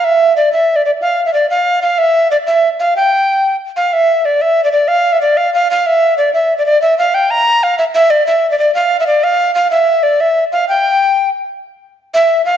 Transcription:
0.04 E5
0.37 D5
0.53 E5
0.76 D5
0.85 D5
1.01 F5
1.26 E5
1.34 D5
1.50 F5
1.82 F5
1.98 E5
2.31 D5
2.47 E5
2.80 F5
2.96 G5
3.77 F5
3.93 E5
4.25 D5
4.42 E5
4.64 D5
4.72 D5
4.88 F5
5.13 E5
5.21 D5
5.37 F5
5.54 F5
5.71 F5
5.86 E5
6.18 D5
6.34 E5
6.58 D5
6.66 D5
6.82 E5
6.98 F5
7.14 G5
7.31 A#5
7.63 F5
7.78 E5
7.95 E5
8.10 D5
8.27 E5
8.51 D5
8.59 D5
8.75 F5
9.00 E5
9.07 D5
9.24 F5
9.55 F5
9.71 E5
10.03 D5
10.21 E5
10.52 F5
10.69 G5
12.14 E5
12.45 F5

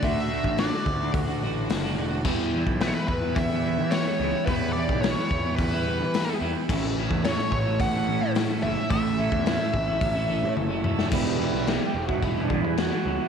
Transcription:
Already playing: D4 A4 F#5
0.02 D2 D3 A3 D4 F#4 E5 C#6, kick, open hi-hat
0.29 D3 A3 D4 F#4
0.44 A1, kick
0.57 D3 A3 D4 F#4 D5, snare, open hi-hat
0.72 A3 D4 F#4
0.86 D2, muted clean electric guitar stroke, kick
0.99 A3 D4 F#4
1.14 D2, kick, open hi-hat
1.27 A3 D4 F#4
1.41 A1 D3 A3 D4 F#4
1.70 F#1, snare, open hi-hat
1.84 A3 D4 F#4
1.96 E1 D3 A3 D4 F#4
2.11 A3 D4 F#4
2.24 E2 E3 G3 B3 E4 B4 E5 G5 E6, kick, crash
2.52 E3 G3 B3 E4
2.66 B1, kick
2.80 E3 G3 B3 E4 B4, snare, open hi-hat
2.88 C#5
2.94 G3 B3 E4 B4
3.08 E2 B4, muted clean electric guitar stroke, kick
3.22 G3 B3 E4
3.35 E2 E5, kick, open hi-hat
3.50 G3 B3 E4
3.63 E3 G3 B3 E4
3.78 E3
3.91 C#5, snare, open hi-hat
4.05 G3 B3 E4
4.20 C#2 E3 G3 B3 E4
4.32 G3 B3 E4
4.46 E2 E3 G3 B3 E4 B4 B5, kick, open hi-hat
4.73 E3 G3 B3 D5
4.77 E4
4.89 B1, kick
5.01 E3 G3 B3 E4 C#5, snare, open hi-hat
5.17 G3 B3 E4
5.31 E2, muted clean electric guitar stroke, kick
5.44 G3 B3 E4
5.56 E2 B4, kick, open hi-hat
5.71 G3 B3 E4
5.85 E3 G3 B3 E4
6.00 E3
6.14 snare, open hi-hat
6.26 G3 B3 E4
6.40 E2 E3 G3 B3 E4
6.55 G3 B3 E4
6.69 A1 A2 E3 A3 C#4 E4 C#5 A5 E6, kick, crash
6.97 E3 A3 C#4 E4
7.10 E2, kick
7.24 A2 E3 A3 C#4 E4 C#5, snare, open hi-hat
7.38 A3 C#4 E4
7.52 A1 C#5, muted clean electric guitar stroke, kick
7.65 A3 C#4 E4
7.80 A1 F#5, kick, open hi-hat
7.93 A3 C#4 E4
8.07 E3 A3 C#4 E4
8.21 A2
8.35 snare, open hi-hat
8.49 A3 C#4 E4
8.62 F#1 E3 A3 C#4 E4 E5
8.75 A3 C#4 E4
8.90 A1 A2 E3 A3 C#4 E4 E5, kick, open hi-hat
9.17 E3 A3 C#4 E4
9.32 E2, kick
9.45 A2 E3 A3 C#4 E4, snare, open hi-hat
9.59 A3 C#4 E4
9.74 A1, muted clean electric guitar stroke, kick
9.86 A3 C#4 E4
10.01 A1, kick, open hi-hat
10.14 A3 C#4 E4
10.28 E3 A3 C#4 E4
10.43 A2
10.57 F#1, high tom
10.69 A3 C#4 E4
10.83 E1 E3 A3 C#4 E4, mid tom
10.96 A3 C#4 E4, snare
11.11 E1 E3 G3 B3 E4, kick, crash
11.38 E3 G3 B3 E4
11.53 B1, snare
11.66 E3 G3 B3 E4, snare, crash
11.80 G3 B3 E4
11.87 G4
11.94 E1, muted clean electric guitar stroke
12.06 B3 E4 F#4, kick
12.11 G3
12.22 E1 E4, kick, crash
12.36 G3 B3 E4
12.43 D4
12.49 E3 G3 B3 E4, kick
12.61 E2 E4
12.77 F#4, snare, crash
12.91 G3 B3 E4
13.05 C#2 E3 G3 B3 E4
13.19 G3 B3 E4

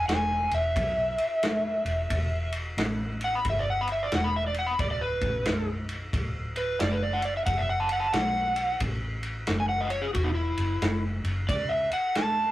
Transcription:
0.08 E1 G#5, snare, ride
0.51 E1 E5, ride
0.76 B1, kick, ride
1.18 ride
1.43 snare, ride
1.85 E1, ride
2.10 E1, kick, ride
2.52 ride
2.77 A1, snare, ride
3.21 F#5, ride
3.35 B5
3.45 G1, kick, ride
3.50 E5
3.59 D5
3.70 F#5
3.81 B5
3.87 ride
3.92 E5
4.03 D5
4.12 E1 F#5, snare, ride
4.24 B5
4.36 E5
4.47 D5
4.54 ride
4.59 F#5
4.67 B5
4.79 D1 D5, kick, ride
4.91 D5
5.01 B4
5.21 A1, kick, ride
5.46 B0, snare, ride
5.89 ride
6.13 D1, kick, ride
6.56 B4, ride
6.79 F#1 D5, snare, ride
6.92 B4
7.03 D5
7.13 F#5
7.22 D5, ride
7.37 E5
7.46 F#1 F#5, kick, ride
7.58 E5
7.69 F#5
7.80 A5
7.89 F#5, ride
8.00 A5
8.13 B1 F#5, snare, ride
8.56 ride
8.80 A1, kick, ride
9.23 ride
9.47 F#1, snare, ride
9.60 G#5
9.69 F#5
9.81 D#5
9.90 C#5, ride
10.02 G#4
10.14 E1 F#4, kick, ride
10.24 D#4
10.35 E4
10.57 F#1, ride
10.82 F#1, snare, ride
11.24 F#1, ride
11.49 C#2 D5, kick, ride
11.69 E5
11.92 F#5, ride
12.15 A5, snare, ride

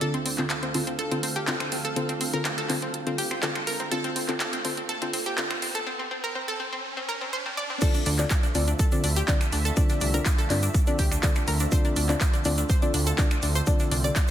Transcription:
Already playing: D3 C4
0.01 D2 D3 C4 F4 A4 F5, closed hi-hat, riser
0.14 C4, closed hi-hat
0.26 C4, open hi-hat
0.38 D3 C4 F4 A4, clap, closed hi-hat
0.50 A4, clap, closed hi-hat
0.63 C4, closed hi-hat
0.74 D3 C4 F4 A4, open hi-hat
0.87 C4, closed hi-hat
0.99 A4, closed hi-hat
1.12 D3 C4 F4 A4, closed hi-hat
1.23 C4, open hi-hat
1.36 G4, closed hi-hat
1.47 D3 C4 F4 A4, clap, closed hi-hat
1.60 C4, finger snap, closed hi-hat
1.72 C4, open hi-hat
1.85 A4, closed hi-hat
1.96 D3 C4 F4 A4, closed hi-hat
2.09 C4, closed hi-hat
2.21 C4, open hi-hat
2.33 D3 C4 F4 A4 A#4, closed hi-hat
2.45 C4, finger snap, clap, closed hi-hat
2.58 A4, closed hi-hat
2.69 D3 C4 F4 A4, clap, open hi-hat
2.82 C4, closed hi-hat
2.94 closed hi-hat
3.07 D3 C4 F4 A4, closed hi-hat
3.18 G4, open hi-hat
3.31 C4, finger snap, closed hi-hat
3.43 D3 C4 F4 A4, clap, closed hi-hat
3.55 C4, finger snap, closed hi-hat
3.67 A#4, open hi-hat
3.80 C4, closed hi-hat
3.91 D3 C4 F4 A4, closed hi-hat
4.04 C4, closed hi-hat
4.16 C4, open hi-hat
4.28 D3 C4 F4 A4, clap, closed hi-hat
4.40 A4, clap, closed hi-hat
4.53 C4, closed hi-hat
4.65 D3 C4 F4 A4, open hi-hat
4.77 C4, closed hi-hat
4.89 A4, closed hi-hat
5.02 D3 C4 F4 A4, closed hi-hat
5.13 C4, open hi-hat
5.26 G4, closed hi-hat
5.38 D3 C4 F4 A4, clap, closed hi-hat
5.51 C4, finger snap, closed hi-hat
5.62 C4, open hi-hat
5.75 A4, closed hi-hat
5.87 C4
5.99 C4
6.11 C4
6.24 A#4
6.35 C4
6.48 A4
6.60 C4
6.73 C4
6.97 C4
7.09 A#4
7.21 C4
7.33 C5
7.46 C4
7.57 D5
7.70 C4
7.81 D3 A3 C4 D4 F4 A4 D5 E5, kick, closed hi-hat, crash, shaker
7.94 D4, closed hi-hat, shaker
8.06 D2 D4, open hi-hat, shaker
8.19 D3 C4 D4 F4 A4 D5, clap, closed hi-hat, shaker
8.30 A4, kick, snare, clap, closed hi-hat, shaker
8.43 D4, snare, closed hi-hat, shaker
8.55 D2 D3 C4 D4 F4 A4 D5, open hi-hat, shaker
8.68 D4, closed hi-hat, shaker
8.79 A4, kick, closed hi-hat, shaker
8.92 D3 C4 D4 F4 A4 D5, closed hi-hat, shaker
9.04 D2 D4, open hi-hat, shaker
9.16 G4, closed hi-hat, shaker
9.27 D3 C4 D4 F4 A4 D5, kick, snare, clap, closed hi-hat, shaker
9.41 D4, finger snap, closed hi-hat, shaker
9.52 D2 D4, open hi-hat, shaker
9.65 A4, closed hi-hat, shaker
9.77 D3 C4 D4 F4 A4 D5, kick, closed hi-hat, shaker
9.89 D4, snare, closed hi-hat, shaker
10.01 C2 D4, open hi-hat, shaker
10.14 D3 C4 D4 F4 A4 A#4 D5, closed hi-hat, shaker
10.26 D4, finger snap, kick, snare, clap, closed hi-hat, shaker
10.38 A4, closed hi-hat, shaker
10.50 G2 D3 C4 D4 F4 A4 D5, clap, open hi-hat, shaker
10.63 D4, closed hi-hat, shaker
10.74 kick, closed hi-hat, shaker
10.87 D3 C4 D4 F4 A4 D5, closed hi-hat, shaker
10.99 D2 G4, kick, open hi-hat, shaker
11.12 D4, finger snap, closed hi-hat, shaker
11.23 D3 C4 D4 F4 A4 D5, kick, snare, clap, closed hi-hat, shaker
11.35 D4, finger snap, closed hi-hat, shaker
11.47 D2 A#4, open hi-hat, shaker
11.60 D4, closed hi-hat, shaker
11.72 D3 C4 D4 F4 A4 C5 D5, kick, closed hi-hat, shaker
11.85 D4, closed hi-hat, shaker
11.96 D2 D4, open hi-hat, shaker
12.09 D3 C4 D4 F4 A4 D5, clap, closed hi-hat, shaker
12.21 C5, kick, snare, clap, closed hi-hat, shaker
12.33 D4, snare, closed hi-hat, shaker
12.44 D2 D3 C4 D4 F4 A4 D5, open hi-hat, shaker
12.58 D4, closed hi-hat, shaker
12.69 C5, kick, closed hi-hat, shaker
12.82 D3 C4 D4 F4 A4 D5, closed hi-hat, shaker
12.94 D2 D4, open hi-hat, shaker
13.06 A4, closed hi-hat, shaker
13.18 D3 C4 D4 F4 A4 D5, kick, snare, clap, closed hi-hat, shaker
13.31 D4, finger snap, closed hi-hat, shaker
13.42 D2 D4, open hi-hat, shaker
13.55 C5, closed hi-hat, shaker
13.66 D3 C4 D4 F4 A4 D5, kick, closed hi-hat, shaker
13.79 D4, snare, closed hi-hat, shaker
13.91 C2 D4, open hi-hat, shaker
14.04 D3 C4 D4 F4 A4 D5, closed hi-hat, shaker
14.16 D4, finger snap, kick, snare, clap, closed hi-hat, shaker
14.27 shaker

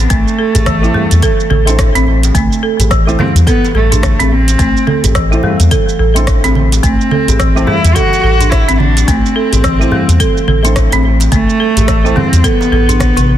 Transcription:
Already playing: B3
0.10 A1 A3, kick, closed hi-hat, shaker
0.28 shaker
0.39 A4
0.55 A1, closed hi-hat, djembe bass, shaker
0.66 E3, kick, cross-stick, closed hi-hat, low conga, shaker
0.81 A3 C4 E4 A4, djembe tone, shaker
0.85 C5
0.94 G3, djembe bass
1.11 E2, closed hi-hat, shaker
1.22 A4, kick, closed hi-hat, shaker
1.40 shaker
1.50 A1 A4, low conga
1.66 A3 C4 D4 E4 A4, closed hi-hat, djembe tone, shaker
1.70 C5
1.78 kick, cross-stick, closed hi-hat, shaker
1.95 A1 C4, closed hi-hat, djembe slap, shaker
2.07 djembe tone
2.23 closed hi-hat, djembe slap, shaker
2.35 A1 A3, kick, closed hi-hat, low conga, shaker
2.53 shaker
2.63 A4
2.79 A1, closed hi-hat, djembe bass, shaker
2.91 E3, kick, cross-stick, closed hi-hat, shaker
3.07 A3 C4 E4 A4 C5, shaker
3.19 G3 C4, low conga, djembe bass
3.35 E2, closed hi-hat, djembe slap, shaker
3.47 B3 A4, kick, closed hi-hat, shaker
3.65 djembe slap, shaker
3.75 A1 A3 A4, djembe tone
3.92 D4, closed hi-hat, djembe bass, shaker
4.03 kick, cross-stick, closed hi-hat, low conga, shaker
4.20 A1 C4, closed hi-hat, djembe tone, shaker
4.31 C4, djembe tone
4.48 closed hi-hat, djembe slap, shaker
4.59 A1 A3, kick, closed hi-hat, shaker
4.77 shaker
4.87 A4, low conga
5.04 A1, closed hi-hat, djembe bass, shaker
5.15 E3, kick, cross-stick, closed hi-hat, shaker
5.30 A3 C4 E4 A4 C5, djembe tone, shaker
5.43 G3, djembe bass
5.60 E2, closed hi-hat, shaker
5.71 A4, kick, closed hi-hat, low conga, shaker
5.89 shaker
5.99 A1 A4
6.14 A3 C4 D4 E4 A4, closed hi-hat, djembe tone, shaker
6.19 C5
6.27 kick, cross-stick, closed hi-hat, shaker
6.44 A1 C4, closed hi-hat, djembe slap, shaker
6.55 djembe tone, low conga
6.72 closed hi-hat, djembe slap, shaker
6.83 A1 A3 C4, kick, closed hi-hat, shaker
7.01 shaker
7.11 A4, low conga
7.28 A1, closed hi-hat, djembe bass, shaker
7.39 E3, kick, cross-stick, closed hi-hat, shaker
7.55 A3 C4 E4 A4 C5, shaker
7.67 G3 E4, djembe bass
7.84 E2, closed hi-hat, djembe slap, shaker
7.95 F#4 A4, kick, closed hi-hat, low conga, shaker
8.13 djembe slap, shaker
8.23 A1 A4, djembe tone
8.40 D4, closed hi-hat, djembe bass, shaker
8.50 E4, kick, cross-stick, closed hi-hat, shaker
8.68 A1 C4, closed hi-hat, djembe tone, shaker
8.74 E4
8.78 D4, djembe tone, low conga
8.97 closed hi-hat, djembe slap, shaker
9.07 A1 A3 C4, kick, closed hi-hat, shaker
9.26 shaker
9.36 A4
9.53 A1, closed hi-hat, djembe bass, shaker
9.64 E3, kick, cross-stick, closed hi-hat, low conga, shaker
9.79 A3 C4 E4 A4 C5, djembe tone, shaker
9.91 G3, djembe bass
10.09 E2, closed hi-hat, shaker
10.20 A4, kick, closed hi-hat, shaker
10.37 shaker
10.48 A1 A4, low conga
10.63 A3 C4 D4 E4 A4 C5, closed hi-hat, djembe tone, shaker
10.76 kick, cross-stick, closed hi-hat, shaker
10.92 A1 C4, closed hi-hat, djembe slap, shaker
11.03 djembe tone
11.20 closed hi-hat, djembe slap, shaker
11.32 A1 A3, kick, closed hi-hat, low conga, shaker
11.50 shaker
11.60 A4
11.77 A1, closed hi-hat, djembe bass, shaker
11.88 E3, kick, cross-stick, closed hi-hat, shaker
12.04 A3 C4 E4 A4 C5, shaker
12.16 G3 C4, low conga, djembe bass
12.33 E2, closed hi-hat, djembe slap, shaker
12.44 B3 A4, kick, closed hi-hat, shaker
12.61 djembe slap, shaker
12.72 A1 A4, djembe tone
12.89 D4, closed hi-hat, djembe bass, shaker
13.00 kick, cross-stick, closed hi-hat, low conga, shaker
13.16 A1 C3, closed hi-hat, djembe tone, shaker
13.29 djembe tone

